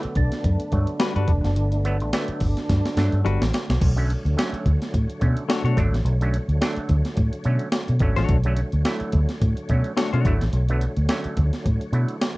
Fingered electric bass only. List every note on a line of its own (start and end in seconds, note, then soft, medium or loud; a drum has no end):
0.05 muted fingered electric bass stroke soft
0.16 0.28 B1 medium
0.45 0.56 F#2 loud
0.73 0.84 G2 loud
1.16 1.25 G2 medium
1.28 1.40 E1 medium
1.44 1.56 F#1 loud
1.56 2.01 G1 loud
2.01 2.10 A1 medium
2.29 muted fingered electric bass stroke soft
2.41 2.53 G1 medium
2.70 2.81 G2 loud
2.97 3.09 G2 loud
3.13 3.22 G2 medium
3.25 3.37 G1 medium
3.41 3.50 A1 medium
3.70 3.78 B1 medium
3.82 4.14 B1 loud
4.25 4.34 D2 loud
4.53 muted fingered electric bass stroke soft
4.66 4.77 D2 medium
4.94 5.05 A2 medium
5.22 5.33 B2 medium
5.64 5.74 B2 medium
5.78 5.89 G#1 medium
5.93 6.02 A1 medium
6.05 6.38 B1 loud
6.48 6.58 D2 loud
6.77 muted fingered electric bass stroke soft
6.90 7.01 D2 medium
7.17 7.29 A2 medium
7.45 7.57 B2 loud
7.89 7.98 B2 loud
8.01 8.13 G#1 medium
8.17 8.26 A1 medium
8.29 8.62 B1 medium
8.73 8.82 D2 loud
9.01 muted fingered electric bass stroke soft
9.14 9.25 D2 medium
9.42 9.53 A2 medium
9.70 9.81 B2 loud
10.14 10.23 B2 medium
10.25 10.37 G#1 medium
10.41 10.50 A1 medium
10.53 10.86 B1 loud
10.97 11.06 D2 loud
11.25 muted fingered electric bass stroke medium
11.38 11.49 D2 medium
11.66 11.77 A2 medium
11.92 12.04 B2 loud